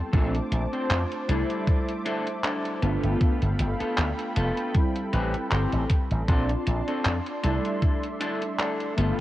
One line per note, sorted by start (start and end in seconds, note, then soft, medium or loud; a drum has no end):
0.00 0.15 G3 medium
0.00 0.15 B3 medium
0.00 0.13 C4 medium
0.00 0.15 E4 medium
0.00 0.12 A4 medium
0.00 2.79 A5 medium
0.00 0.12 C6 medium
0.12 0.39 A#1 medium
0.12 1.21 A3 medium
0.12 1.21 C4 medium
0.12 0.34 C4 loud
0.12 0.34 D4 medium
0.12 1.22 D4 medium
0.12 1.22 F4 medium
0.12 0.35 A4 loud
0.12 2.80 C5 medium
0.12 1.27 D6 medium
0.12 kick loud
0.12 closed hi-hat medium
0.35 closed hi-hat soft
0.52 0.65 A#1 loud
0.52 muted clean electric guitar stroke soft
0.52 closed hi-hat medium
0.73 1.01 C4 medium
0.73 1.01 D4 medium
0.73 1.01 C5 medium
0.73 closed hi-hat soft
0.90 1.03 F2 loud
0.90 clap loud
0.90 closed hi-hat medium
1.12 closed hi-hat soft
1.27 1.42 C2 medium
1.27 2.75 G3 medium
1.27 2.75 A3 medium
1.27 1.92 D4 medium
1.27 2.76 D4 medium
1.27 1.92 E4 medium
1.27 2.76 E4 medium
1.27 1.92 A4 loud
1.27 2.81 E5 medium
1.27 2.81 D6 medium
1.27 closed hi-hat medium
1.50 closed hi-hat soft
1.67 kick loud
1.67 closed hi-hat medium
1.88 closed hi-hat soft
2.05 2.27 D4 loud
2.05 2.27 E4 medium
2.05 2.27 A4 loud
2.05 closed hi-hat medium
2.27 closed hi-hat soft
2.44 2.82 D4 medium
2.44 2.83 E4 medium
2.44 2.82 A4 medium
2.44 clap loud
2.44 closed hi-hat medium
2.65 closed hi-hat soft
2.81 2.96 G1 medium
2.81 4.67 A3 medium
2.81 4.68 B3 medium
2.81 3.45 B3 medium
2.81 4.68 D4 medium
2.81 3.46 F4 medium
2.81 4.69 F4 loud
2.81 4.73 A4 medium
2.81 3.46 A4 loud
2.81 4.73 F5 medium
2.81 6.25 G5 medium
2.81 6.25 B5 medium
2.81 closed hi-hat medium
3.04 3.15 G1 loud
3.04 closed hi-hat soft
3.21 muted slap bass stroke soft
3.21 kick loud
3.21 closed hi-hat medium
3.42 3.53 G1 medium
3.42 closed hi-hat soft
3.59 3.73 G1 medium
3.59 muted clean electric guitar stroke soft
3.59 closed hi-hat medium
3.80 4.08 B3 medium
3.80 4.08 F4 medium
3.80 4.09 A4 medium
3.80 muted slap bass stroke soft
3.80 closed hi-hat soft
3.98 4.11 D2 loud
3.98 clap loud
3.98 closed hi-hat medium
4.19 closed hi-hat soft
4.36 4.50 F1 medium
4.36 4.75 B3 medium
4.36 4.75 F4 medium
4.36 4.75 A4 loud
4.36 closed hi-hat medium
4.57 closed hi-hat soft
4.74 6.21 G3 medium
4.74 6.22 C4 medium
4.74 6.23 E4 medium
4.74 6.27 A4 medium
4.74 kick loud
4.74 closed hi-hat medium
4.96 closed hi-hat soft
5.13 5.34 A1 loud
5.13 5.34 C4 loud
5.13 5.34 G4 medium
5.13 5.35 B4 loud
5.13 closed hi-hat medium
5.34 muted slap bass stroke soft
5.34 closed hi-hat soft
5.51 5.65 G1 loud
5.51 5.90 C4 medium
5.51 5.90 G4 medium
5.51 5.90 C5 medium
5.51 clap loud
5.51 closed hi-hat medium
5.73 5.84 A1 medium
5.73 closed hi-hat soft
5.90 kick medium
5.90 closed hi-hat medium
6.11 6.22 A1 loud
6.11 closed hi-hat soft
6.28 6.54 A#1 medium
6.28 6.50 C4 loud
6.28 7.37 C4 medium
6.28 6.50 D4 loud
6.28 7.37 D4 medium
6.28 7.38 F4 medium
6.28 6.50 A4 loud
6.28 8.95 D5 medium
6.28 7.43 A5 medium
6.28 8.95 C6 medium
6.28 kick loud
6.28 closed hi-hat medium
6.50 closed hi-hat soft
6.67 6.80 A#1 loud
6.67 muted clean electric guitar stroke soft
6.67 closed hi-hat medium
6.88 7.16 C4 medium
6.88 7.16 D4 medium
6.88 7.16 A4 medium
6.88 closed hi-hat soft
7.05 7.19 F2 loud
7.05 clap loud
7.05 closed hi-hat medium
7.26 closed hi-hat soft
7.43 7.57 C2 medium
7.43 8.90 G3 medium
7.43 8.91 A3 medium
7.43 8.07 D4 medium
7.43 8.91 D4 medium
7.43 8.07 E4 medium
7.43 8.92 E4 medium
7.43 9.21 A4 medium
7.43 8.07 A4 loud
7.43 8.96 E5 medium
7.43 closed hi-hat loud
7.65 closed hi-hat soft
7.82 kick loud
7.82 closed hi-hat medium
8.03 closed hi-hat soft
8.20 8.42 D4 loud
8.20 8.42 E4 loud
8.20 8.42 A4 loud
8.20 closed hi-hat medium
8.42 closed hi-hat soft
8.59 8.97 D4 medium
8.59 8.98 E4 medium
8.59 8.97 A4 medium
8.59 clap loud
8.59 closed hi-hat medium
8.80 closed hi-hat soft
8.96 9.11 G1 medium
8.96 9.21 A3 medium
8.96 9.21 B3 medium
8.96 9.21 D4 medium
8.96 9.21 F4 medium
8.96 9.21 F4 loud
8.96 9.21 A4 loud
8.96 9.21 F5 medium
8.96 9.21 G5 medium
8.96 9.21 B5 medium
8.96 closed hi-hat medium